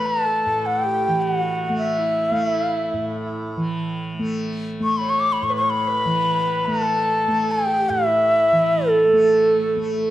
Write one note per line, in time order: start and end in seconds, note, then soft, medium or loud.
0.00 0.46 A2 medium
0.00 1.07 E3 soft
0.00 1.70 A3 medium
0.00 0.17 B4 medium
0.06 0.68 A5 medium
0.18 0.27 B4 soft
0.25 0.87 A4 medium
0.46 2.93 A2 medium
0.66 0.80 F#5 medium
0.80 1.22 G5 medium
0.85 1.41 G4 medium
1.08 3.56 E3 medium
1.22 1.34 G5 medium
1.34 1.78 F#5 medium
1.40 2.00 F#4 medium
1.70 2.31 A3 medium
1.79 2.32 E5 medium
1.98 3.52 E4 medium
2.31 4.19 A3 medium
2.31 2.47 F5 medium
2.47 2.62 E5 medium
2.62 2.77 F5 medium
2.77 3.28 E5 medium
2.93 5.42 A2 soft
3.57 6.05 E3 medium
4.19 4.80 A3 medium
4.80 6.67 A3 medium
4.80 4.99 C#6 medium
4.97 5.11 B5 medium
5.02 5.52 C#5 medium
5.09 5.21 C#6 medium
5.20 5.34 D6 medium
5.32 5.45 B5 medium
5.42 7.89 A2 medium
5.42 5.55 C#6 medium
5.50 5.62 B4 medium
5.56 5.71 C#6 medium
5.61 5.90 C#5 medium
5.70 6.67 B5 medium
5.88 6.84 B4 medium
6.05 8.51 E3 medium
6.66 7.28 A3 medium
6.66 7.53 A5 loud
6.82 7.69 A4 medium
7.28 9.13 A3 medium
7.51 7.91 G5 medium
7.67 8.08 G4 medium
7.90 10.10 A2 medium
7.90 8.89 E5 loud
8.06 9.06 E4 medium
8.52 10.10 E3 medium
8.88 10.10 A4 medium
9.04 10.10 A3 medium
9.13 9.76 A3 medium
9.76 10.10 A3 medium